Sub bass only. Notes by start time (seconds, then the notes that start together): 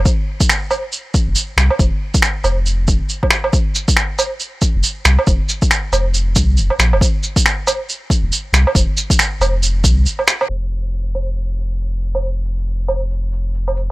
1.27 F1
1.57 C2
1.80 F1
2.44 F1
2.88 F1
4.75 F1
5.05 C2
5.27 F1
5.92 F1
6.36 C2
6.58 F1
6.79 A#1
6.92 F1
8.23 F1
8.53 C2
8.75 F1
9.40 F1
9.84 C2
10.49 F1